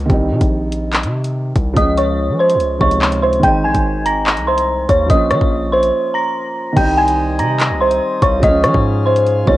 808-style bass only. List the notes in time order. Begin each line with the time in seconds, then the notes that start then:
0.10 C2
0.31 C3
0.41 A#1
1.04 C3
1.56 C2
1.77 C#2
2.29 F3
2.55 C#2
2.81 C#2
3.43 G#1
3.64 A#1
3.75 G#1
4.37 C2
4.89 D#2
5.10 A#1
5.31 F3
5.41 A#1
6.77 C2
7.39 C3
7.70 C2
8.22 C2
8.43 C#2
8.64 F3
8.75 G#2
9.47 C#2